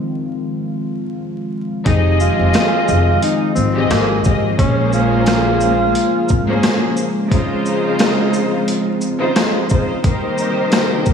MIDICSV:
0, 0, Header, 1, 6, 480
1, 0, Start_track
1, 0, Key_signature, -4, "minor"
1, 0, Tempo, 681818
1, 1309, Time_signature, 4, 2, 24, 8
1, 7838, End_track
2, 0, Start_track
2, 0, Title_t, "String section"
2, 0, Program_c, 0, 48
2, 1299, Note_on_c, 0, 53, 102
2, 1303, Note_on_c, 0, 60, 93
2, 1305, Note_on_c, 0, 67, 91
2, 1309, Note_on_c, 0, 68, 97
2, 1313, Note_on_c, 0, 75, 115
2, 2520, Note_off_c, 0, 53, 0
2, 2522, Note_off_c, 0, 60, 0
2, 2523, Note_off_c, 0, 67, 0
2, 2525, Note_off_c, 0, 68, 0
2, 2527, Note_off_c, 0, 75, 0
2, 2640, Note_on_c, 0, 53, 92
2, 2644, Note_on_c, 0, 60, 85
2, 2647, Note_on_c, 0, 67, 84
2, 2650, Note_on_c, 0, 68, 84
2, 2654, Note_on_c, 0, 75, 106
2, 2963, Note_off_c, 0, 53, 0
2, 2964, Note_off_c, 0, 60, 0
2, 2966, Note_off_c, 0, 67, 0
2, 2968, Note_off_c, 0, 68, 0
2, 2970, Note_off_c, 0, 75, 0
2, 2983, Note_on_c, 0, 53, 76
2, 2987, Note_on_c, 0, 60, 73
2, 2990, Note_on_c, 0, 67, 73
2, 2993, Note_on_c, 0, 68, 73
2, 2996, Note_on_c, 0, 75, 87
2, 3209, Note_off_c, 0, 53, 0
2, 3211, Note_off_c, 0, 60, 0
2, 3212, Note_off_c, 0, 67, 0
2, 3214, Note_off_c, 0, 68, 0
2, 3215, Note_off_c, 0, 75, 0
2, 3219, Note_on_c, 0, 46, 106
2, 3221, Note_on_c, 0, 58, 104
2, 3225, Note_on_c, 0, 61, 96
2, 3228, Note_on_c, 0, 68, 95
2, 3232, Note_on_c, 0, 72, 110
2, 4440, Note_off_c, 0, 46, 0
2, 4441, Note_off_c, 0, 58, 0
2, 4443, Note_off_c, 0, 61, 0
2, 4444, Note_off_c, 0, 68, 0
2, 4447, Note_off_c, 0, 72, 0
2, 4552, Note_on_c, 0, 46, 92
2, 4556, Note_on_c, 0, 58, 92
2, 4559, Note_on_c, 0, 61, 82
2, 4563, Note_on_c, 0, 68, 92
2, 4566, Note_on_c, 0, 72, 107
2, 4879, Note_off_c, 0, 46, 0
2, 4881, Note_off_c, 0, 58, 0
2, 4882, Note_off_c, 0, 61, 0
2, 4884, Note_off_c, 0, 68, 0
2, 4886, Note_off_c, 0, 72, 0
2, 5137, Note_on_c, 0, 49, 108
2, 5140, Note_on_c, 0, 56, 97
2, 5144, Note_on_c, 0, 63, 96
2, 5147, Note_on_c, 0, 65, 97
2, 5150, Note_on_c, 0, 72, 106
2, 6359, Note_off_c, 0, 49, 0
2, 6360, Note_off_c, 0, 56, 0
2, 6362, Note_off_c, 0, 63, 0
2, 6364, Note_off_c, 0, 65, 0
2, 6365, Note_off_c, 0, 72, 0
2, 6471, Note_on_c, 0, 49, 96
2, 6475, Note_on_c, 0, 56, 86
2, 6478, Note_on_c, 0, 63, 90
2, 6482, Note_on_c, 0, 65, 90
2, 6485, Note_on_c, 0, 72, 108
2, 6798, Note_off_c, 0, 49, 0
2, 6800, Note_off_c, 0, 56, 0
2, 6801, Note_off_c, 0, 63, 0
2, 6803, Note_off_c, 0, 65, 0
2, 6805, Note_off_c, 0, 72, 0
2, 6823, Note_on_c, 0, 49, 80
2, 6826, Note_on_c, 0, 56, 74
2, 6830, Note_on_c, 0, 63, 71
2, 6833, Note_on_c, 0, 65, 66
2, 6837, Note_on_c, 0, 72, 90
2, 7049, Note_off_c, 0, 49, 0
2, 7051, Note_off_c, 0, 56, 0
2, 7052, Note_off_c, 0, 63, 0
2, 7054, Note_off_c, 0, 65, 0
2, 7056, Note_off_c, 0, 72, 0
2, 7061, Note_on_c, 0, 51, 102
2, 7065, Note_on_c, 0, 63, 85
2, 7069, Note_on_c, 0, 67, 90
2, 7071, Note_on_c, 0, 70, 87
2, 7075, Note_on_c, 0, 72, 112
2, 7838, Note_off_c, 0, 51, 0
2, 7838, Note_off_c, 0, 63, 0
2, 7838, Note_off_c, 0, 67, 0
2, 7838, Note_off_c, 0, 70, 0
2, 7838, Note_off_c, 0, 72, 0
2, 7838, End_track
3, 0, Start_track
3, 0, Title_t, "Tenor saxophone"
3, 0, Program_c, 1, 66
3, 1316, Note_on_c, 1, 63, 98
3, 1529, Note_off_c, 1, 63, 0
3, 1552, Note_on_c, 1, 65, 90
3, 2242, Note_off_c, 1, 65, 0
3, 2273, Note_on_c, 1, 63, 86
3, 2487, Note_off_c, 1, 63, 0
3, 2496, Note_on_c, 1, 60, 86
3, 2718, Note_off_c, 1, 60, 0
3, 2745, Note_on_c, 1, 58, 89
3, 2963, Note_off_c, 1, 58, 0
3, 3230, Note_on_c, 1, 61, 102
3, 3446, Note_off_c, 1, 61, 0
3, 3476, Note_on_c, 1, 65, 100
3, 4645, Note_off_c, 1, 65, 0
3, 7838, End_track
4, 0, Start_track
4, 0, Title_t, "Analog synth pad"
4, 0, Program_c, 2, 89
4, 0, Note_on_c, 2, 51, 94
4, 0, Note_on_c, 2, 53, 78
4, 0, Note_on_c, 2, 56, 76
4, 0, Note_on_c, 2, 60, 86
4, 0, Note_on_c, 2, 65, 98
4, 1279, Note_off_c, 2, 53, 0
4, 1279, Note_off_c, 2, 56, 0
4, 1279, Note_off_c, 2, 65, 0
4, 1287, Note_off_c, 2, 60, 0
4, 1288, Note_off_c, 2, 51, 0
4, 1314, Note_on_c, 2, 56, 80
4, 1315, Note_on_c, 2, 53, 77
4, 1315, Note_on_c, 2, 65, 94
4, 1316, Note_on_c, 2, 51, 85
4, 1316, Note_on_c, 2, 60, 75
4, 3213, Note_off_c, 2, 51, 0
4, 3213, Note_off_c, 2, 60, 0
4, 3239, Note_on_c, 2, 49, 80
4, 3240, Note_on_c, 2, 58, 83
4, 5135, Note_off_c, 2, 58, 0
4, 5157, Note_on_c, 2, 60, 83
4, 7044, Note_off_c, 2, 53, 0
4, 7044, Note_off_c, 2, 56, 0
4, 7044, Note_off_c, 2, 65, 0
4, 7046, Note_off_c, 2, 49, 0
4, 7054, Note_off_c, 2, 60, 0
4, 7061, Note_on_c, 2, 48, 86
4, 7061, Note_on_c, 2, 51, 81
4, 7062, Note_on_c, 2, 55, 84
4, 7062, Note_on_c, 2, 58, 85
4, 7062, Note_on_c, 2, 63, 98
4, 7838, Note_off_c, 2, 48, 0
4, 7838, Note_off_c, 2, 51, 0
4, 7838, Note_off_c, 2, 55, 0
4, 7838, Note_off_c, 2, 58, 0
4, 7838, Note_off_c, 2, 63, 0
4, 7838, End_track
5, 0, Start_track
5, 0, Title_t, "Upright bass"
5, 0, Program_c, 3, 32
5, 1311, Note_on_c, 3, 29, 105
5, 1598, Note_off_c, 3, 29, 0
5, 1684, Note_on_c, 3, 29, 88
5, 1766, Note_off_c, 3, 29, 0
5, 2032, Note_on_c, 3, 29, 98
5, 2216, Note_off_c, 3, 29, 0
5, 2512, Note_on_c, 3, 32, 91
5, 2697, Note_off_c, 3, 32, 0
5, 2752, Note_on_c, 3, 32, 97
5, 2936, Note_off_c, 3, 32, 0
5, 3001, Note_on_c, 3, 32, 97
5, 3182, Note_off_c, 3, 32, 0
5, 3232, Note_on_c, 3, 34, 106
5, 4163, Note_off_c, 3, 34, 0
5, 4439, Note_on_c, 3, 32, 90
5, 4620, Note_off_c, 3, 32, 0
5, 7838, End_track
6, 0, Start_track
6, 0, Title_t, "Drums"
6, 1309, Note_on_c, 9, 42, 97
6, 1310, Note_on_c, 9, 36, 123
6, 1379, Note_off_c, 9, 42, 0
6, 1380, Note_off_c, 9, 36, 0
6, 1549, Note_on_c, 9, 82, 47
6, 1620, Note_off_c, 9, 82, 0
6, 1783, Note_on_c, 9, 54, 70
6, 1788, Note_on_c, 9, 42, 81
6, 1794, Note_on_c, 9, 38, 117
6, 1798, Note_on_c, 9, 37, 90
6, 1854, Note_off_c, 9, 54, 0
6, 1858, Note_off_c, 9, 42, 0
6, 1864, Note_off_c, 9, 38, 0
6, 1869, Note_off_c, 9, 37, 0
6, 2028, Note_on_c, 9, 82, 53
6, 2098, Note_off_c, 9, 82, 0
6, 2270, Note_on_c, 9, 42, 91
6, 2341, Note_off_c, 9, 42, 0
6, 2506, Note_on_c, 9, 82, 51
6, 2576, Note_off_c, 9, 82, 0
6, 2750, Note_on_c, 9, 42, 65
6, 2751, Note_on_c, 9, 54, 73
6, 2753, Note_on_c, 9, 38, 104
6, 2757, Note_on_c, 9, 37, 85
6, 2820, Note_off_c, 9, 42, 0
6, 2822, Note_off_c, 9, 54, 0
6, 2823, Note_off_c, 9, 38, 0
6, 2828, Note_off_c, 9, 37, 0
6, 2986, Note_on_c, 9, 82, 50
6, 2999, Note_on_c, 9, 36, 90
6, 3056, Note_off_c, 9, 82, 0
6, 3069, Note_off_c, 9, 36, 0
6, 3230, Note_on_c, 9, 36, 118
6, 3230, Note_on_c, 9, 42, 101
6, 3301, Note_off_c, 9, 36, 0
6, 3301, Note_off_c, 9, 42, 0
6, 3469, Note_on_c, 9, 82, 47
6, 3539, Note_off_c, 9, 82, 0
6, 3704, Note_on_c, 9, 54, 70
6, 3708, Note_on_c, 9, 42, 84
6, 3713, Note_on_c, 9, 38, 118
6, 3718, Note_on_c, 9, 37, 92
6, 3774, Note_off_c, 9, 54, 0
6, 3778, Note_off_c, 9, 42, 0
6, 3784, Note_off_c, 9, 38, 0
6, 3788, Note_off_c, 9, 37, 0
6, 3946, Note_on_c, 9, 82, 57
6, 4017, Note_off_c, 9, 82, 0
6, 4189, Note_on_c, 9, 42, 93
6, 4260, Note_off_c, 9, 42, 0
6, 4424, Note_on_c, 9, 82, 54
6, 4436, Note_on_c, 9, 36, 101
6, 4495, Note_off_c, 9, 82, 0
6, 4506, Note_off_c, 9, 36, 0
6, 4669, Note_on_c, 9, 42, 65
6, 4672, Note_on_c, 9, 38, 108
6, 4672, Note_on_c, 9, 54, 76
6, 4676, Note_on_c, 9, 37, 87
6, 4739, Note_off_c, 9, 42, 0
6, 4742, Note_off_c, 9, 38, 0
6, 4742, Note_off_c, 9, 54, 0
6, 4747, Note_off_c, 9, 37, 0
6, 4906, Note_on_c, 9, 82, 54
6, 4976, Note_off_c, 9, 82, 0
6, 5150, Note_on_c, 9, 36, 119
6, 5151, Note_on_c, 9, 42, 101
6, 5221, Note_off_c, 9, 36, 0
6, 5221, Note_off_c, 9, 42, 0
6, 5389, Note_on_c, 9, 82, 46
6, 5460, Note_off_c, 9, 82, 0
6, 5624, Note_on_c, 9, 54, 70
6, 5627, Note_on_c, 9, 42, 84
6, 5633, Note_on_c, 9, 38, 119
6, 5638, Note_on_c, 9, 37, 94
6, 5694, Note_off_c, 9, 54, 0
6, 5698, Note_off_c, 9, 42, 0
6, 5703, Note_off_c, 9, 38, 0
6, 5708, Note_off_c, 9, 37, 0
6, 5867, Note_on_c, 9, 82, 57
6, 5937, Note_off_c, 9, 82, 0
6, 6110, Note_on_c, 9, 42, 92
6, 6181, Note_off_c, 9, 42, 0
6, 6345, Note_on_c, 9, 82, 52
6, 6415, Note_off_c, 9, 82, 0
6, 6589, Note_on_c, 9, 42, 64
6, 6591, Note_on_c, 9, 38, 102
6, 6591, Note_on_c, 9, 54, 74
6, 6596, Note_on_c, 9, 37, 82
6, 6659, Note_off_c, 9, 42, 0
6, 6661, Note_off_c, 9, 38, 0
6, 6661, Note_off_c, 9, 54, 0
6, 6666, Note_off_c, 9, 37, 0
6, 6824, Note_on_c, 9, 82, 54
6, 6838, Note_on_c, 9, 36, 92
6, 6894, Note_off_c, 9, 82, 0
6, 6908, Note_off_c, 9, 36, 0
6, 7068, Note_on_c, 9, 42, 98
6, 7069, Note_on_c, 9, 36, 120
6, 7139, Note_off_c, 9, 42, 0
6, 7140, Note_off_c, 9, 36, 0
6, 7307, Note_on_c, 9, 82, 50
6, 7377, Note_off_c, 9, 82, 0
6, 7544, Note_on_c, 9, 54, 70
6, 7546, Note_on_c, 9, 42, 79
6, 7552, Note_on_c, 9, 38, 119
6, 7557, Note_on_c, 9, 37, 96
6, 7614, Note_off_c, 9, 54, 0
6, 7617, Note_off_c, 9, 42, 0
6, 7622, Note_off_c, 9, 38, 0
6, 7627, Note_off_c, 9, 37, 0
6, 7785, Note_on_c, 9, 82, 54
6, 7791, Note_on_c, 9, 36, 88
6, 7838, Note_off_c, 9, 36, 0
6, 7838, Note_off_c, 9, 82, 0
6, 7838, End_track
0, 0, End_of_file